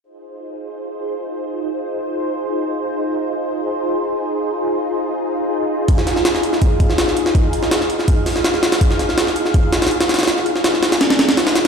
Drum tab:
HH |--------------------------------|--------------------------------|--------------------------------|--------------------------------|
SD |--------------------------------|--------------------------------|--------------------------------|--------------------------------|
BD |--------------------------------|--------------------------------|--------------------------------|--------------------------------|

HH |x---x---x---x---x---x---x---x---|x---x---x---x---x---o---x---x-x-|x---x---x---x---x---x-xxx-x-xxxx|x---x---x---x-x-x-x-x-x-x-x-x---|
SD |--o-o-o-o-o---o-------o-o-o---o-|------o-o-o---o-----o-o-o-o-o-o-|--o-o-o-o-o---o-----o-oo--o-oooo|o-o---o-o-o-o-o-o-o-o-o-o-o-o---|
BD |o---------------o---o-----------|o---------------o---------------|o---------------o---------------|--------------------------------|